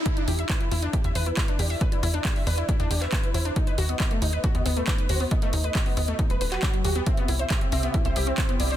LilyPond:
<<
  \new Staff \with { instrumentName = "Supersaw synth" } { \time 4/4 \key e \minor \tempo 4 = 137 e''8 r16 e''8 r16 e''8 r16 e''8 b'8 r16 d''8 | d''8 r16 d''8 r16 d''8 r16 d''8 b'8 r16 c''8 | dis''8 r16 dis''8 r16 dis''8 r16 dis''8 b'8 r16 c''8 | dis''8 r16 dis''8 r16 dis''8 r16 b'8 fis'8 r16 g'8 |
e''8 r16 e''8 r16 e''8 r16 e''8 c''8 r16 d''8 | }
  \new Staff \with { instrumentName = "Synth pluck" } { \time 4/4 \key e \minor e'16 d'16 g'16 e''16 b'16 e'16 e'16 d'16 g'16 e''16 b'16 e'16 e'16 d'16 g'16 e''16 | b'16 e'16 e'16 d'16 g'16 e''16 b'16 e'16 e'16 d'16 g'16 e''16 b'16 e'16 e'16 d'16 | dis'16 b'16 fis'16 b16 b16 a16 dis'16 b'16 fis'16 b16 b16 a16 dis'16 b'16 fis'16 b16 | b16 a16 dis'16 b'16 fis'16 b16 b16 a16 r16 b'16 b'16 b'16 fis16 fis16 fis'16 b16 |
c'16 b16 e'16 c''16 g'16 c'16 c'16 b16 e'16 c''16 g'16 c'16 c'16 b16 e'16 c''16 | }
  \new Staff \with { instrumentName = "Analog synth pad" } { \time 4/4 \key e \minor r1 | r1 | r1 | r1 |
<c c' e' g'>1 | }
  \new Staff \with { instrumentName = "Analog synth bass" } { \clef bass \time 4/4 \key e \minor r8 e,8 r8 e,8 r16 e,16 e,8 r8 e,8 | r8 e,8 r8 e,8 r16 e,16 e,8 r8 e,8 | r8 dis,8 r8 dis,8 r16 dis,16 dis,8 r8 dis,8 | r8 dis,8 r8 dis,8 r16 dis,,16 dis,,8 r8 dis,8 |
r8 c,8 r8 c,8 r16 c,16 c,8 r8 c,8 | }
  \new DrumStaff \with { instrumentName = "Drums" } \drummode { \time 4/4 <hh bd>16 hh16 hho16 hh16 <hc hh bd>16 hh16 hho16 hh16 <hh bd>16 hh16 hho16 hh16 <hc hh bd>16 hh16 hho16 hho16 | <hh bd>16 hh16 hho16 hh16 <hc hh bd>16 hho16 hho16 hh16 <hh bd>16 hh16 hho16 <hc hh>16 <hc hh bd>16 hh16 hho16 hh16 | <hh bd>16 hh16 hho16 hh16 <hc hh bd>16 hh16 hho16 hh16 <hh bd>16 hh16 hho16 hh16 <hc hh bd>16 hh16 hho16 hho16 | <hh bd>16 hh16 hho16 hh16 <hc hh bd>16 hho16 hho16 hh16 <hh bd>16 hh16 hho16 <hc hh>16 <hc hh bd>16 hh16 hho16 hh16 |
<hh bd>16 hh16 hho16 hh16 <hc hh bd>16 hh16 hho16 hh16 <hh bd>16 hh16 hho16 hh16 <hc hh bd>16 hh16 hho16 hho16 | }
>>